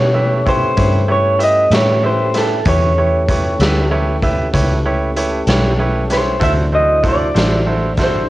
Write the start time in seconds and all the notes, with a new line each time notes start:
Already playing: B2 A3 C#4 G4 A4 C#5
0.14 E4 G4 B4 E5
0.46 E4 G4 B4 C5 C#5, kick, closed hi-hat
0.77 G2 E4 G4 B4 C#5, kick, closed hi-hat
1.08 E4 G4 B4 C#5
1.39 E4 G4 B4 E5, closed hi-hat
1.43 D#5
1.71 A2 E4 G4 B4 C#5 E5, snare, closed hi-hat
2.03 E4 G4 B4 C5 E5
2.34 E4 G4 B4 E5, snare, closed hi-hat
2.38 A4
2.65 E2 A3 C#4 E4 G4 A4 B4 C#5, kick, closed hi-hat
2.98 E4 G4 B4 C#5
3.28 E4 G4 B4 C#5, kick, closed hi-hat
3.59 D2 E4 G4 B4 E5, snare, closed hi-hat
3.91 E4 G4 B4 C#5
4.22 E4 G4 B4 E5, kick, closed hi-hat
4.54 C#2 E4 G4 B4 C#5, kick, closed hi-hat
4.85 E4 G4 B4 C#5
5.16 E4 G4 B4 C#5, closed hi-hat
5.47 B1 E4 G4 B4 C#5, snare, closed hi-hat
5.79 E4 G4 B4 C#5
6.10 E4 G4 B4 C5 C#5, snare, closed hi-hat
6.39 D2 F#3 E4 F#4 A4 C5 E5, kick, closed hi-hat
6.44 D4 E4
6.72 E4 F#4 A4 C5 D#5
7.03 E4 F#4 A4 C5, kick, closed hi-hat
7.08 D5
7.34 A1 E4 F#4 A4 C5, snare, closed hi-hat
7.66 E4 F#4 A4 C5
7.97 E4 F#4 A4 C5, kick, snare, closed hi-hat
8.04 C5